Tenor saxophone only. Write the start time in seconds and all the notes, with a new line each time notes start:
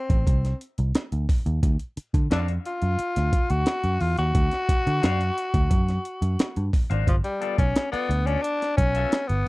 Already playing: C4
2.32 D4
2.66 F4
3.50 F#4
4.01 F4
4.18 F#4
7.08 F3
7.24 G3
7.58 C#4
7.92 B3
8.26 C#4
8.42 D4
8.77 C#4
9.28 B3